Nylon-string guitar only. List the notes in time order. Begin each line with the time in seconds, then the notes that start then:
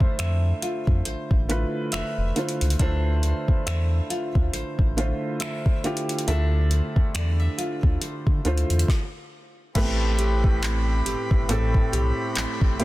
Already playing: D4 F4 C5 E5
0.19 E5
0.62 F4
1.06 C5
1.49 F4
1.93 E5
2.36 F4
2.79 D4 E5
3.23 C5
3.66 E5
4.10 F4
4.53 C5
4.97 F4
5.40 E5
5.84 F4
6.27 D4 E5
6.71 C5
7.14 D5
7.39 E5
7.58 F4
8.01 C5
8.45 F4
9.75 A3
10.19 G4
10.62 C4
11.06 G4
11.49 C4
11.92 G4
12.36 C4
12.80 G4